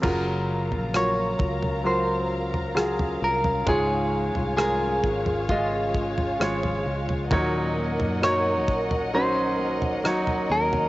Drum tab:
CC |x---------------|----------------|----------------|
SD |----r-------r---|----r-------r---|----r-------r---|
FT |o--o--oo---o-o-o|o--o---o---o-o-o|o--o---o---o-o-o|
BD |o-----o---------|o-----o-o-o-----|o-----o---------|